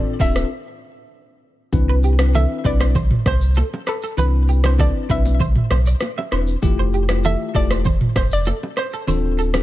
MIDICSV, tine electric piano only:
0, 0, Header, 1, 2, 480
1, 0, Start_track
1, 0, Key_signature, 0, "major"
1, 0, Tempo, 612245
1, 1354, Time_signature, 4, 2, 24, 8
1, 7549, End_track
2, 0, Start_track
2, 0, Title_t, "Tine electric piano"
2, 0, Program_c, 0, 4
2, 0, Note_on_c, 0, 60, 81
2, 0, Note_on_c, 0, 62, 74
2, 0, Note_on_c, 0, 65, 71
2, 0, Note_on_c, 0, 69, 90
2, 125, Note_off_c, 0, 60, 0
2, 126, Note_off_c, 0, 62, 0
2, 127, Note_off_c, 0, 65, 0
2, 127, Note_off_c, 0, 69, 0
2, 153, Note_on_c, 0, 60, 81
2, 155, Note_on_c, 0, 62, 72
2, 156, Note_on_c, 0, 65, 71
2, 158, Note_on_c, 0, 69, 87
2, 375, Note_off_c, 0, 60, 0
2, 376, Note_off_c, 0, 62, 0
2, 376, Note_off_c, 0, 65, 0
2, 377, Note_off_c, 0, 69, 0
2, 1353, Note_on_c, 0, 60, 98
2, 1354, Note_on_c, 0, 62, 90
2, 1355, Note_on_c, 0, 64, 91
2, 1357, Note_on_c, 0, 71, 109
2, 1688, Note_off_c, 0, 60, 0
2, 1689, Note_off_c, 0, 62, 0
2, 1689, Note_off_c, 0, 64, 0
2, 1690, Note_off_c, 0, 71, 0
2, 1716, Note_on_c, 0, 60, 81
2, 1717, Note_on_c, 0, 62, 75
2, 1719, Note_on_c, 0, 64, 70
2, 1720, Note_on_c, 0, 71, 85
2, 2045, Note_off_c, 0, 60, 0
2, 2045, Note_off_c, 0, 62, 0
2, 2047, Note_off_c, 0, 64, 0
2, 2047, Note_off_c, 0, 71, 0
2, 2069, Note_on_c, 0, 60, 77
2, 2071, Note_on_c, 0, 62, 73
2, 2072, Note_on_c, 0, 64, 72
2, 2074, Note_on_c, 0, 71, 86
2, 2293, Note_off_c, 0, 60, 0
2, 2294, Note_off_c, 0, 62, 0
2, 2294, Note_off_c, 0, 64, 0
2, 2295, Note_off_c, 0, 71, 0
2, 3271, Note_on_c, 0, 60, 99
2, 3273, Note_on_c, 0, 62, 92
2, 3275, Note_on_c, 0, 64, 89
2, 3275, Note_on_c, 0, 71, 111
2, 3607, Note_off_c, 0, 60, 0
2, 3608, Note_off_c, 0, 62, 0
2, 3609, Note_off_c, 0, 64, 0
2, 3609, Note_off_c, 0, 71, 0
2, 3637, Note_on_c, 0, 60, 78
2, 3639, Note_on_c, 0, 62, 73
2, 3640, Note_on_c, 0, 64, 73
2, 3642, Note_on_c, 0, 71, 87
2, 3965, Note_off_c, 0, 60, 0
2, 3966, Note_off_c, 0, 62, 0
2, 3967, Note_off_c, 0, 64, 0
2, 3968, Note_off_c, 0, 71, 0
2, 3991, Note_on_c, 0, 60, 75
2, 3993, Note_on_c, 0, 62, 73
2, 3995, Note_on_c, 0, 64, 71
2, 3996, Note_on_c, 0, 71, 89
2, 4214, Note_off_c, 0, 60, 0
2, 4215, Note_off_c, 0, 62, 0
2, 4216, Note_off_c, 0, 64, 0
2, 4217, Note_off_c, 0, 71, 0
2, 4952, Note_on_c, 0, 60, 79
2, 4953, Note_on_c, 0, 62, 74
2, 4955, Note_on_c, 0, 64, 75
2, 4957, Note_on_c, 0, 71, 87
2, 5126, Note_off_c, 0, 60, 0
2, 5127, Note_off_c, 0, 62, 0
2, 5128, Note_off_c, 0, 64, 0
2, 5129, Note_off_c, 0, 71, 0
2, 5191, Note_on_c, 0, 57, 99
2, 5193, Note_on_c, 0, 64, 89
2, 5194, Note_on_c, 0, 65, 88
2, 5196, Note_on_c, 0, 67, 114
2, 5527, Note_off_c, 0, 57, 0
2, 5528, Note_off_c, 0, 64, 0
2, 5529, Note_off_c, 0, 65, 0
2, 5530, Note_off_c, 0, 67, 0
2, 5557, Note_on_c, 0, 57, 78
2, 5557, Note_on_c, 0, 64, 71
2, 5560, Note_on_c, 0, 65, 73
2, 5561, Note_on_c, 0, 67, 86
2, 5885, Note_off_c, 0, 57, 0
2, 5885, Note_off_c, 0, 64, 0
2, 5887, Note_off_c, 0, 65, 0
2, 5887, Note_off_c, 0, 67, 0
2, 5912, Note_on_c, 0, 57, 77
2, 5913, Note_on_c, 0, 64, 69
2, 5915, Note_on_c, 0, 65, 72
2, 5917, Note_on_c, 0, 67, 85
2, 6135, Note_off_c, 0, 57, 0
2, 6135, Note_off_c, 0, 64, 0
2, 6136, Note_off_c, 0, 65, 0
2, 6137, Note_off_c, 0, 67, 0
2, 7112, Note_on_c, 0, 60, 97
2, 7113, Note_on_c, 0, 62, 90
2, 7115, Note_on_c, 0, 65, 89
2, 7116, Note_on_c, 0, 69, 110
2, 7448, Note_off_c, 0, 60, 0
2, 7448, Note_off_c, 0, 62, 0
2, 7449, Note_off_c, 0, 65, 0
2, 7450, Note_off_c, 0, 69, 0
2, 7477, Note_on_c, 0, 60, 79
2, 7478, Note_on_c, 0, 62, 71
2, 7480, Note_on_c, 0, 65, 72
2, 7481, Note_on_c, 0, 69, 84
2, 7549, Note_off_c, 0, 60, 0
2, 7549, Note_off_c, 0, 62, 0
2, 7549, Note_off_c, 0, 65, 0
2, 7549, Note_off_c, 0, 69, 0
2, 7549, End_track
0, 0, End_of_file